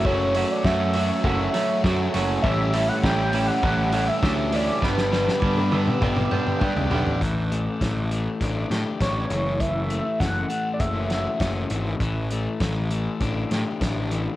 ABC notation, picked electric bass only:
X:1
M:4/4
L:1/16
Q:1/4=100
K:Amix
V:1 name="Picked electric bass" clef=bass
F,,,4 F,,4 F,,,2 z2 F,,2 F,,,2 | A,,,4 A,,,4 A,,,4 D,,4 | G,,,4 G,,4 G,,,2 z2 G,, C,, B,,, A,,, | A,,,4 A,,,4 A,,,2 A,, z A,,,2 F,,,2- |
F,,,4 F,,,2 z2 F,,,4 F,,,2 ^G,,,2 | A,,,4 A,,,4 A,,,2 A,, z A,,,4 |]